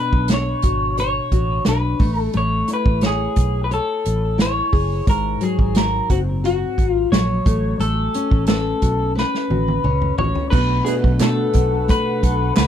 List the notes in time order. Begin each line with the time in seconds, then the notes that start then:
Already playing: B2 D4 B4
0.13 B1, kick
0.28 C#5, snare, closed hi-hat
0.34 C#5
0.62 G#1 F#4, kick, closed hi-hat
0.97 C#5, closed hi-hat
1.32 A1 F#4, kick, closed hi-hat
1.65 B1 D4 B4, snare, closed hi-hat
1.99 A1 A3, kick, open hi-hat
2.21 A4
2.33 A1 A3 C#5, closed hi-hat
2.68 E4, closed hi-hat
2.73 B4
2.86 A1, kick
3.01 C#5, snare, closed hi-hat
3.06 G#4
3.36 B1, kick, closed hi-hat
3.64 B4
3.71 A4 C#5, closed hi-hat
4.05 A1, closed hi-hat
4.38 E4 C#5, snare, closed hi-hat
4.72 F#1 G#4, kick, open hi-hat
5.07 G#1 G#2 A#4, kick, closed hi-hat
5.41 F#3 G#4, closed hi-hat
5.59 G#1, kick
5.75 F#4 A#4, snare, closed hi-hat
6.10 F#1 C4 F#4, kick, closed hi-hat
6.44 F#4, closed hi-hat
6.78 G#1, kick, closed hi-hat
6.90 F4
7.12 A#1 F#3 C#5, snare, closed hi-hat
7.46 A1 A3, kick, closed hi-hat
7.80 A1 A3 A4, closed hi-hat
8.14 C#4, closed hi-hat
8.31 A1, kick
8.46 A4 B4, snare, closed hi-hat
8.82 B1 F#4, kick, closed hi-hat
9.15 B4, snare
9.34 snare
9.50 A1 F#4, high tom
9.68 high tom
9.84 C#2 C#4, mid tom
10.02 mid tom
10.18 A1 F#4 C#5, floor tom
10.35 floor tom
10.50 B1 B2 A3 D4 F#4 B4 F#5, kick, crash
10.85 A3 D4 F#4 G#4 B4, closed hi-hat
11.04 B1, kick
11.19 B2 A3 A4, snare, clap, closed hi-hat
11.53 B1 D4, kick, closed hi-hat
11.88 A3 B4, kick, closed hi-hat
12.23 B1 A4, kick, closed hi-hat
12.57 C#2 A3 B4, snare, clap, closed hi-hat